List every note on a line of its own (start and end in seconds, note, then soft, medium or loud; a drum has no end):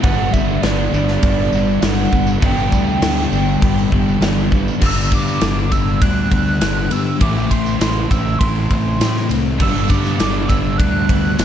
0.02 0.28 G1 loud
0.02 1.21 G2 loud
0.02 0.61 G2 loud
0.02 0.63 D3 loud
0.02 0.34 D3 medium
0.02 0.36 G3 medium
0.02 0.32 G3 medium
0.02 0.35 B3 loud
0.02 0.32 D4 loud
0.02 0.34 F#5 loud
0.02 kick loud
0.02 tambourine soft
0.02 crash medium
0.19 tambourine soft
0.32 0.58 G1 loud
0.32 0.62 D3 medium
0.32 0.64 G3 medium
0.32 0.65 G3 medium
0.32 0.66 B3 medium
0.32 0.66 D4 medium
0.32 0.63 E5 medium
0.32 kick medium
0.32 tambourine medium
0.49 tambourine soft
0.62 0.88 G1 loud
0.62 1.81 G2 medium
0.62 1.54 D3 medium
0.62 1.22 D3 medium
0.62 1.52 G3 medium
0.62 0.97 G3 medium
0.62 1.23 B3 medium
0.62 1.22 D5 medium
0.62 snare loud
0.62 tambourine medium
0.62 crash medium
0.66 0.96 B3 medium
0.66 0.93 D4 medium
0.93 1.18 G1 loud
0.93 1.25 B3 medium
0.93 1.25 D4 medium
0.93 2.46 D4 medium
0.93 tambourine medium
0.97 1.23 G3 medium
1.08 snare soft
1.08 tambourine soft
1.22 1.47 G1 loud
1.22 2.41 G2 loud
1.22 1.82 D3 medium
1.22 1.55 G3 loud
1.22 2.13 B3 medium
1.22 1.53 B3 medium
1.22 1.52 D4 loud
1.22 1.83 D5 loud
1.22 kick loud
1.22 tambourine soft
1.22 crash medium
1.52 1.77 G1 loud
1.52 1.82 D3 medium
1.52 1.84 G3 medium
1.52 1.84 B3 medium
1.52 1.86 D4 medium
1.52 tambourine medium
1.68 tambourine soft
1.81 2.07 G1 medium
1.81 2.41 G2 medium
1.81 2.41 D3 medium
1.81 2.13 D3 medium
1.81 2.15 G3 medium
1.81 2.11 G3 medium
1.81 2.13 B3 medium
1.81 2.47 F#5 loud
1.81 snare loud
1.81 tambourine medium
1.81 crash medium
1.86 2.11 D4 medium
1.97 tambourine soft
2.11 2.37 G1 medium
2.11 2.42 D3 medium
2.11 2.45 G3 medium
2.11 3.03 B3 medium
2.11 2.44 B3 medium
2.11 2.45 D4 medium
2.11 kick medium
2.11 tambourine soft
2.15 2.44 G3 medium
2.27 tambourine medium
2.41 2.67 G1 loud
2.41 3.00 G2 loud
2.41 3.02 G2 loud
2.41 3.01 D3 medium
2.41 2.73 D3 loud
2.41 3.91 E3 medium
2.41 2.74 G3 loud
2.41 2.70 G3 medium
2.41 2.72 B3 loud
2.41 2.70 D4 loud
2.41 kick loud
2.41 tambourine soft
2.41 crash medium
2.46 4.23 G5 loud
2.57 tambourine soft
2.71 2.96 D2 medium
2.71 3.01 D3 medium
2.71 3.03 G3 medium
2.71 3.03 B3 medium
2.71 3.04 D4 medium
2.71 kick medium
2.71 tambourine medium
2.87 tambourine soft
3.01 3.26 D2 medium
3.01 4.19 G2 medium
3.01 3.92 D3 medium
3.01 3.62 D3 medium
3.01 3.35 G3 medium
3.01 3.89 G3 medium
3.01 3.62 B3 medium
3.01 3.33 B3 medium
3.01 snare loud
3.01 tambourine loud
3.01 crash medium
3.05 3.31 D4 medium
3.19 tambourine soft
3.32 3.56 G1 medium
3.32 3.63 B3 medium
3.32 3.64 D4 medium
3.32 4.82 D4 medium
3.32 tambourine medium
3.36 3.62 G3 medium
3.47 tambourine soft
3.62 3.86 G1 loud
3.62 4.22 G2 medium
3.62 4.20 D3 loud
3.62 3.95 G3 medium
3.62 4.51 B3 medium
3.62 3.94 B3 medium
3.62 3.92 D4 loud
3.62 kick loud
3.62 tambourine soft
3.62 crash medium
3.78 tambourine soft
3.90 4.16 G1 medium
3.90 4.21 D3 medium
3.90 4.21 E3 medium
3.90 4.22 G3 medium
3.90 4.24 D4 medium
3.90 kick medium
3.95 4.22 G3 medium
3.95 4.23 B3 medium
4.08 tambourine soft
4.21 4.70 G1 medium
4.21 4.79 G2 medium
4.21 4.80 D3 medium
4.21 4.54 D3 medium
4.21 4.82 E3 medium
4.21 4.54 G3 medium
4.21 4.51 G3 medium
4.21 4.52 B3 medium
4.21 snare loud
4.21 tambourine loud
4.21 crash medium
4.25 4.50 D4 medium
4.38 tambourine soft
4.51 4.81 D3 medium
4.51 4.80 G3 medium
4.51 4.81 G3 medium
4.51 4.82 B3 medium
4.51 4.81 B3 medium
4.51 4.80 D4 medium
4.51 kick medium
4.51 tambourine soft
4.68 tambourine medium
4.81 5.10 G1 medium
4.81 5.41 G2 medium
4.81 5.42 D3 medium
4.81 5.43 G3 medium
4.81 7.19 B3 medium
4.81 7.20 D4 medium
4.81 kick loud
4.81 crash loud
4.86 5.16 E6 loud
4.98 tambourine soft
5.12 5.40 G2 medium
5.12 5.73 D6 loud
5.12 kick medium
5.12 ride medium
5.12 tambourine medium
5.28 tambourine medium
5.41 5.99 G1 medium
5.41 6.01 G2 medium
5.41 5.73 D3 medium
5.41 5.69 G3 medium
5.41 snare loud
5.41 ride medium
5.41 tambourine medium
5.58 tambourine soft
5.71 6.61 D3 medium
5.71 6.63 G3 medium
5.71 6.01 E6 loud
5.71 kick medium
5.71 ride medium
5.71 tambourine medium
5.88 tambourine soft
6.02 6.59 D2 loud
6.02 7.21 D4 medium
6.02 6.94 F#6 loud
6.02 kick loud
6.02 ride loud
6.02 tambourine soft
6.32 6.90 B3 medium
6.32 kick medium
6.32 ride medium
6.47 tambourine soft
6.60 6.90 G1 medium
6.60 7.19 G2 medium
6.60 6.92 D3 medium
6.60 6.89 G3 medium
6.60 snare loud
6.60 ride loud
6.60 tambourine medium
6.78 tambourine soft
6.90 7.22 G2 medium
6.90 7.19 D3 medium
6.90 7.18 G3 medium
6.90 7.21 B3 medium
6.90 7.23 E6 loud
6.90 ride medium
6.90 tambourine medium
7.19 7.50 A1 loud
7.19 7.78 A2 medium
7.19 7.80 E3 medium
7.19 7.81 A3 medium
7.19 9.59 C4 medium
7.19 7.50 D6 loud
7.19 kick loud
7.19 ride medium
7.23 9.59 E4 medium
7.36 tambourine soft
7.51 7.80 A1 medium
7.51 7.78 C6 medium
7.51 kick medium
7.51 ride medium
7.51 tambourine medium
7.66 tambourine medium
7.79 8.09 A1 medium
7.79 8.40 A2 medium
7.79 8.11 E3 medium
7.79 8.10 E3 medium
7.79 8.08 A3 medium
7.79 8.12 C6 medium
7.79 snare loud
7.79 ride loud
7.79 tambourine medium
7.96 tambourine soft
8.09 8.39 A1 medium
8.09 9.01 E3 medium
8.09 8.98 E3 medium
8.09 9.00 A3 medium
8.09 8.40 E6 loud
8.09 kick medium
8.09 ride medium
8.09 tambourine medium
8.26 tambourine soft
8.39 8.69 A1 medium
8.39 9.60 E4 medium
8.39 9.29 C6 medium
8.39 kick loud
8.39 ride medium
8.39 tambourine soft
8.70 8.99 A1 loud
8.70 9.30 C4 medium
8.70 kick medium
8.70 ride medium
8.98 9.57 A2 medium
8.98 9.29 A2 medium
8.98 9.30 E3 medium
8.98 9.61 E3 medium
8.98 9.27 A3 medium
8.98 snare loud
8.98 ride medium
8.98 tambourine medium
9.16 snare soft
9.16 tambourine soft
9.29 9.59 C2 medium
9.29 9.58 E3 medium
9.29 9.57 A3 medium
9.29 9.61 C4 medium
9.29 ride medium
9.29 tambourine medium
9.45 tambourine soft
9.60 9.89 G1 loud
9.60 11.45 G2 medium
9.60 10.16 G2 medium
9.60 10.18 D3 medium
9.60 9.92 G3 medium
9.60 10.20 G3 medium
9.60 9.91 B3 medium
9.60 9.89 D4 loud
9.60 9.92 E6 loud
9.60 kick loud
9.60 crash medium
9.88 10.19 G2 medium
9.88 10.20 G3 medium
9.88 10.21 B3 medium
9.88 10.22 D4 medium
9.88 10.50 D6 loud
9.88 kick medium
9.88 ride medium
9.88 tambourine medium
10.04 snare soft
10.04 tambourine medium
10.17 10.77 G1 medium
10.17 11.36 G2 medium
10.17 10.50 D3 medium
10.17 10.79 D3 medium
10.17 10.50 G3 medium
10.17 10.48 G3 medium
10.17 snare loud
10.17 ride medium
10.17 tambourine medium
10.22 10.49 B3 medium
10.22 10.46 D4 medium
10.35 tambourine soft
10.47 11.38 G3 medium
10.47 11.10 G3 medium
10.47 11.09 B3 medium
10.47 11.07 D4 medium
10.47 10.79 E6 loud
10.47 kick medium
10.47 ride medium
10.47 tambourine medium
10.51 11.37 D3 medium
10.65 tambourine soft
10.78 11.37 D2 medium
10.78 11.45 D4 medium
10.78 11.45 F#6 loud
10.78 kick loud
10.78 ride medium
10.78 tambourine soft
11.08 11.37 G3 medium
11.08 11.38 B3 medium
11.08 11.45 B3 medium
11.08 11.39 D4 medium
11.08 kick medium
11.08 ride medium
11.25 tambourine soft
11.37 11.45 G1 medium
11.37 11.45 G2 medium
11.37 11.45 D3 medium
11.37 11.45 G3 medium
11.37 11.45 B3 medium
11.37 11.45 D4 medium
11.37 snare loud
11.37 ride loud
11.37 tambourine loud